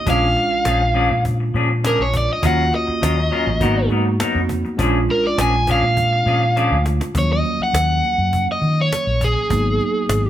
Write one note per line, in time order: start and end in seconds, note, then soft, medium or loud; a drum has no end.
0.06 0.34 A#1 loud
0.06 0.25 F3 medium
0.06 2.38 G#3 medium
0.06 2.39 C#4 medium
0.06 0.25 C#4 medium
0.06 0.25 D4 medium
0.06 2.39 D4 medium
0.06 2.40 F4 medium
0.06 0.25 G#4 medium
0.06 cajon bass loud
0.10 1.23 F5 loud
0.36 muted clean electric guitar stroke soft
0.36 cajon slap soft
0.51 muted clean electric guitar stroke soft
0.65 1.08 A#1 loud
0.65 0.81 F3 medium
0.65 0.81 C#4 medium
0.65 0.80 D4 medium
0.65 0.79 G#4 medium
0.65 cajon slap loud
0.81 muted clean electric guitar stroke soft
0.94 1.10 F3 medium
0.94 1.10 C#4 medium
0.94 1.10 D4 medium
0.94 1.09 G#4 medium
0.94 cajon slap soft
1.10 1.52 A#2 medium
1.10 muted clean electric guitar stroke soft
1.25 cajon bass medium
1.25 cajon slap soft
1.40 muted clean electric guitar stroke soft
1.54 1.96 A#2 medium
1.54 1.70 F3 medium
1.54 1.69 C#4 medium
1.54 1.69 D4 medium
1.54 1.68 G#4 medium
1.54 cajon slap soft
1.69 muted clean electric guitar stroke soft
1.84 2.02 F3 medium
1.84 2.02 C#4 medium
1.84 2.02 D4 medium
1.84 2.03 G#4 medium
1.84 2.00 A#4 medium
1.84 cajon slap loud
2.00 2.27 A#1 medium
2.00 2.15 C#5 medium
2.13 2.30 D5 medium
2.13 muted clean electric guitar stroke soft
2.13 cajon bass medium
2.29 2.45 D#5 loud
2.29 muted clean electric guitar stroke soft
2.42 2.70 D#2 loud
2.42 2.61 F#3 medium
2.42 3.58 A#3 medium
2.42 3.59 C#4 medium
2.42 2.61 C#4 medium
2.42 2.61 F4 medium
2.42 3.60 F4 medium
2.42 3.60 F#4 medium
2.42 2.62 A#4 medium
2.42 cajon bass loud
2.47 2.74 F#5 loud
2.72 3.88 D#5 loud
2.72 muted clean electric guitar stroke soft
2.72 cajon slap soft
2.87 muted clean electric guitar stroke soft
2.87 muted fingered electric bass stroke soft
3.01 3.30 D#2 loud
3.01 3.17 F#3 medium
3.01 3.17 C#4 medium
3.01 3.16 F4 medium
3.01 3.16 A#4 medium
3.01 cajon slap loud
3.17 muted clean electric guitar stroke soft
3.31 3.47 F#3 medium
3.31 3.47 C#4 medium
3.31 3.46 F4 medium
3.31 3.46 A#4 medium
3.31 cajon slap soft
3.47 3.60 A1 medium
3.47 muted clean electric guitar stroke medium
3.60 3.88 G#1 loud
3.60 3.76 F#3 medium
3.60 4.76 A#3 medium
3.60 4.77 B3 medium
3.60 3.76 B3 medium
3.60 3.75 D#4 medium
3.60 4.77 D#4 medium
3.60 4.78 F#4 medium
3.60 3.75 A#4 medium
3.60 cajon bass medium
3.76 muted clean electric guitar stroke soft
3.90 4.18 G#2 loud
3.90 4.05 F#3 medium
3.90 4.05 B3 medium
3.90 4.05 D#4 medium
3.90 4.04 A#4 medium
3.90 cajon slap soft
4.06 muted clean electric guitar stroke soft
4.20 4.38 F#3 medium
4.20 4.38 B3 medium
4.20 4.39 D#4 medium
4.20 4.39 A#4 medium
4.20 cajon slap loud
4.35 4.63 F2 medium
4.49 muted clean electric guitar stroke soft
4.49 cajon bass medium
4.65 muted clean electric guitar stroke soft
4.65 cajon slap soft
4.77 5.06 A#1 loud
4.77 4.97 F3 medium
4.77 7.10 G#3 medium
4.77 7.10 C#4 medium
4.77 4.97 C#4 loud
4.77 7.11 D4 medium
4.77 4.97 D4 medium
4.77 7.11 F4 medium
4.77 4.98 G#4 medium
4.77 cajon bass loud
5.09 5.25 A#4 loud
5.09 muted clean electric guitar stroke soft
5.09 cajon slap soft
5.24 5.39 D5 medium
5.24 muted clean electric guitar stroke soft
5.38 5.80 A#1 loud
5.38 5.53 F3 medium
5.38 5.53 C#4 medium
5.38 5.53 D4 medium
5.38 5.53 G#4 medium
5.38 5.68 G#5 loud
5.38 cajon slap loud
5.54 muted clean electric guitar stroke soft
5.67 5.83 F3 medium
5.67 5.83 C#4 medium
5.67 5.82 D4 medium
5.67 5.82 G#4 medium
5.67 6.84 F5 loud
5.67 cajon bass medium
5.83 6.23 A#2 medium
5.83 muted clean electric guitar stroke soft
5.97 cajon bass medium
5.97 cajon slap soft
6.12 muted clean electric guitar stroke soft
6.26 6.68 A#2 medium
6.26 6.41 F3 medium
6.26 6.42 C#4 medium
6.26 6.42 D4 medium
6.26 6.41 G#4 medium
6.26 cajon slap soft
6.43 muted clean electric guitar stroke soft
6.56 6.74 F3 medium
6.56 6.74 C#4 medium
6.56 6.75 D4 medium
6.56 6.75 G#4 loud
6.56 cajon slap soft
6.56 cajon slap medium
6.71 6.99 D2 medium
6.85 muted clean electric guitar stroke soft
6.85 cajon slap medium
7.01 muted clean electric guitar stroke soft
7.01 cajon slap medium
7.14 7.43 D#2 loud
7.14 9.48 F3 medium
7.14 9.46 F#3 medium
7.14 9.47 A#3 medium
7.14 9.47 C#4 medium
7.14 cajon bass loud
7.19 7.32 C#5 medium
7.33 7.60 D#5 medium
7.45 cajon slap soft
7.60 8.47 F#5 medium
7.60 muted fingered electric bass stroke soft
7.73 8.01 D#2 loud
7.73 cajon slap loud
8.04 cajon slap soft
8.18 8.46 F#2 medium
8.33 cajon bass medium
8.52 8.79 D#5 medium
8.62 8.90 D#3 medium
8.62 cajon slap soft
8.81 9.22 C#5 medium
8.93 cajon slap loud
9.07 9.35 A#1 medium
9.21 10.30 G#4 medium
9.21 cajon bass medium
9.50 9.78 G#1 loud
9.50 10.30 F#3 medium
9.50 10.30 A#3 medium
9.50 10.30 B3 medium
9.50 10.30 D#4 medium
9.50 cajon bass loud
9.80 cajon slap soft
10.09 10.30 G#1 loud
10.09 cajon slap loud